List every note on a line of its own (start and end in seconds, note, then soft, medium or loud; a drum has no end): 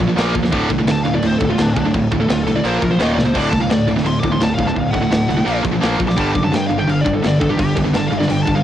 0.00 0.16 A#1 loud
0.00 crash medium
0.09 0.15 A#2 medium
0.09 0.15 F3 medium
0.16 0.34 A#1 medium
0.16 0.33 A#2 medium
0.16 0.33 F3 medium
0.16 0.34 A#3 loud
0.16 snare loud
0.16 crash medium
0.34 0.52 D#2 medium
0.34 0.43 A#2 medium
0.34 0.42 F3 medium
0.34 kick medium
0.34 crash medium
0.43 0.52 A#2 medium
0.43 0.52 F3 medium
0.43 snare soft
0.52 0.70 D1 medium
0.52 0.69 D2 loud
0.52 0.68 A2 medium
0.52 0.69 D3 loud
0.52 kick loud
0.52 crash medium
0.70 0.87 C2 medium
0.70 0.78 D2 medium
0.70 0.77 A2 medium
0.70 kick medium
0.70 crash medium
0.78 0.86 D2 medium
0.78 0.87 A2 medium
0.87 1.04 D2 medium
0.87 1.04 D2 loud
0.87 1.04 A2 medium
0.87 snare loud
0.87 crash medium
0.92 1.01 A5 loud
1.03 1.22 D1 loud
1.03 1.13 D2 medium
1.03 1.13 A2 medium
1.03 1.15 F5 loud
1.03 crash medium
1.14 1.23 D2 medium
1.14 1.23 A2 medium
1.14 1.25 D5 medium
1.22 1.40 D1 medium
1.22 1.40 D2 medium
1.22 1.39 A2 medium
1.22 crash medium
1.27 1.38 C5 loud
1.38 1.58 D1 loud
1.38 1.49 D2 medium
1.38 1.49 A2 medium
1.38 1.48 A4 loud
1.38 kick medium
1.38 crash medium
1.50 1.58 D2 medium
1.50 1.58 A2 medium
1.50 1.60 F4 medium
1.58 1.76 D1 loud
1.58 1.75 D2 medium
1.58 1.75 A2 medium
1.58 1.72 D4 medium
1.58 snare loud
1.58 crash medium
1.74 1.93 D1 medium
1.74 1.84 D2 medium
1.74 1.84 A2 medium
1.74 1.89 D4 loud
1.74 kick medium
1.74 crash medium
1.85 1.93 D2 medium
1.85 1.94 A2 medium
1.94 2.11 D1 loud
1.94 2.10 D2 medium
1.94 2.10 A2 medium
1.94 kick loud
1.94 crash medium
2.11 2.28 D1 medium
2.11 2.21 D2 medium
2.11 2.20 A2 medium
2.11 kick medium
2.11 crash medium
2.20 2.28 D2 medium
2.20 2.28 A2 medium
2.20 2.30 A4 medium
2.29 2.46 D1 medium
2.29 2.45 D2 medium
2.29 2.45 A2 medium
2.29 2.42 F4 loud
2.29 snare loud
2.29 crash medium
2.43 2.63 C2 loud
2.43 2.55 A2 medium
2.43 2.54 A4 loud
2.47 2.55 D2 medium
2.47 crash medium
2.56 2.64 D2 medium
2.56 2.64 A2 medium
2.56 2.66 D5 medium
2.64 2.81 A#1 loud
2.64 2.81 A#2 medium
2.64 2.81 F3 medium
2.64 2.81 A#3 loud
2.64 2.77 C5 loud
2.64 crash medium
2.79 2.98 A#1 loud
2.79 2.90 A#2 medium
2.79 2.90 F3 medium
2.79 2.91 A#4 medium
2.79 kick medium
2.79 crash medium
2.91 2.99 A#2 medium
2.91 2.99 F3 medium
2.91 3.01 C5 medium
2.99 3.16 D#1 loud
2.99 3.16 D#2 medium
2.99 3.16 A#2 loud
2.99 3.17 D#3 medium
2.99 3.13 D#5 loud
2.99 snare loud
2.99 crash medium
3.14 3.37 C#2 medium
3.14 3.25 D#2 medium
3.14 3.25 A#2 medium
3.14 3.24 D5 medium
3.19 snare medium
3.24 3.34 D#2 medium
3.24 3.34 A#2 medium
3.24 3.37 C5 medium
3.34 3.52 D1 medium
3.34 3.51 D2 medium
3.34 3.51 A2 loud
3.34 3.52 D3 loud
3.34 3.48 D5 loud
3.34 kick loud
3.34 crash loud
3.34 crash medium
3.49 3.69 C2 medium
3.49 3.60 D2 medium
3.49 3.59 A2 medium
3.49 3.60 A5 loud
3.49 kick medium
3.49 crash medium
3.61 3.69 D2 medium
3.61 3.69 A2 medium
3.61 3.70 F5 medium
3.70 3.87 D2 medium
3.70 3.86 D2 medium
3.70 3.86 A2 loud
3.70 3.88 D5 loud
3.70 snare loud
3.70 crash medium
3.87 4.04 D1 medium
3.87 3.95 D2 medium
3.87 3.95 A2 medium
3.87 crash medium
3.96 4.04 D2 medium
3.96 4.04 A2 medium
3.96 snare soft
4.04 4.22 D1 loud
4.04 4.21 D2 medium
4.04 4.21 A2 medium
4.04 4.18 C6 loud
4.04 crash medium
4.20 4.39 D1 loud
4.20 4.31 D2 medium
4.20 4.31 A2 medium
4.20 4.32 D6 medium
4.20 kick loud
4.20 crash medium
4.32 4.39 D2 medium
4.32 4.39 A2 medium
4.32 4.42 C6 loud
4.40 4.57 D1 medium
4.40 4.56 D2 medium
4.40 4.57 A2 medium
4.40 4.53 A5 loud
4.40 snare loud
4.40 crash medium
4.54 4.65 F5 loud
4.58 4.76 D1 medium
4.58 4.67 D2 medium
4.58 4.66 A2 medium
4.58 kick medium
4.58 crash medium
4.67 4.74 D2 medium
4.67 4.75 A2 medium
4.67 4.77 A5 medium
4.67 snare soft
4.76 4.93 D1 loud
4.76 4.92 D2 medium
4.76 4.92 A2 medium
4.76 4.89 F5 loud
4.76 kick loud
4.76 crash medium
4.90 5.10 D1 medium
4.90 5.02 D2 medium
4.90 5.01 A2 medium
4.90 5.58 F#5 loud
4.90 kick medium
4.90 crash medium
5.02 5.10 D2 medium
5.02 5.10 A2 medium
5.11 5.28 D1 loud
5.11 5.27 D2 medium
5.11 5.27 A2 medium
5.11 snare loud
5.11 crash medium
5.28 5.46 C2 loud
5.28 5.36 D2 medium
5.28 5.36 A2 medium
5.28 crash medium
5.37 5.45 D2 medium
5.37 5.46 A2 medium
5.46 5.63 A#1 medium
5.46 5.62 A#2 loud
5.46 5.62 F3 loud
5.46 5.63 A#3 loud
5.46 crash medium
5.63 5.81 A#1 loud
5.63 5.71 A#2 medium
5.63 5.70 F3 medium
5.63 kick loud
5.63 crash medium
5.72 5.79 A#2 medium
5.72 5.80 F3 medium
5.81 5.99 A#1 medium
5.81 5.97 A#2 medium
5.81 5.97 F3 medium
5.81 5.98 A#3 medium
5.81 snare loud
5.81 crash medium
5.98 6.17 A#1 medium
5.98 6.06 A#2 medium
5.98 6.06 F3 medium
5.98 kick medium
5.98 crash medium
6.07 6.16 A#2 medium
6.07 6.16 F3 medium
6.07 6.18 D6 loud
6.07 snare soft
6.16 6.35 G1 medium
6.16 6.33 G2 medium
6.16 6.32 D3 loud
6.16 6.34 G3 loud
6.16 6.30 A5 loud
6.16 kick loud
6.16 crash medium
6.32 6.52 F#2 loud
6.32 6.42 G2 medium
6.32 6.41 D3 medium
6.32 6.42 D6 loud
6.32 kick medium
6.32 crash medium
6.43 6.51 G2 medium
6.43 6.51 D3 medium
6.43 6.54 A5 loud
6.52 6.68 G2 medium
6.52 6.70 G2 medium
6.52 6.68 D3 loud
6.52 6.66 G5 loud
6.52 snare loud
6.52 crash medium
6.67 6.88 G1 loud
6.67 6.77 G2 medium
6.67 6.77 D3 medium
6.67 6.79 F5 loud
6.67 crash medium
6.78 6.86 G2 medium
6.78 6.87 D3 medium
6.78 6.90 G5 medium
6.87 7.05 G1 loud
6.87 7.03 G2 medium
6.87 7.03 D3 medium
6.87 7.00 F5 loud
6.87 crash medium
7.01 7.13 D3 medium
7.01 7.12 D5 medium
7.05 7.23 G1 loud
7.05 7.13 G2 medium
7.05 kick loud
7.05 crash medium
7.14 7.23 G2 medium
7.14 7.23 D3 medium
7.14 7.25 A4 medium
7.24 7.40 G1 loud
7.24 7.39 G2 medium
7.24 7.39 D3 medium
7.24 7.37 D5 loud
7.24 snare loud
7.24 crash medium
7.39 7.58 G1 medium
7.39 7.49 G2 medium
7.39 7.48 D3 medium
7.39 7.49 A4 loud
7.39 kick medium
7.39 crash medium
7.50 7.57 G2 medium
7.50 7.58 D3 medium
7.50 7.59 G4 loud
7.59 7.76 G1 loud
7.59 7.75 G2 medium
7.59 7.75 D3 loud
7.59 7.77 G4 loud
7.59 kick loud
7.59 crash medium
7.76 7.93 G1 medium
7.76 7.84 G2 medium
7.76 7.83 D3 medium
7.76 kick medium
7.76 crash medium
7.85 7.93 G2 medium
7.85 7.93 D3 medium
7.94 8.11 G1 loud
7.94 8.10 G2 medium
7.94 8.10 D3 medium
7.94 8.07 A5 loud
7.94 snare loud
7.94 crash medium
8.07 8.18 F5 loud
8.12 8.29 G1 loud
8.12 8.19 G2 medium
8.12 8.19 D3 medium
8.12 crash medium
8.19 8.28 G2 medium
8.19 8.28 D3 medium
8.19 8.29 D5 loud
8.19 snare soft
8.29 8.47 G1 loud
8.29 8.45 G2 medium
8.29 8.45 D3 medium
8.29 8.42 G5 loud
8.29 crash loud
8.43 8.54 A5 medium
8.47 8.63 G1 loud
8.47 8.56 G2 medium
8.47 8.56 D3 medium
8.47 kick loud
8.47 crash medium
8.55 8.63 G2 medium
8.55 8.63 D3 medium
8.55 8.63 F5 medium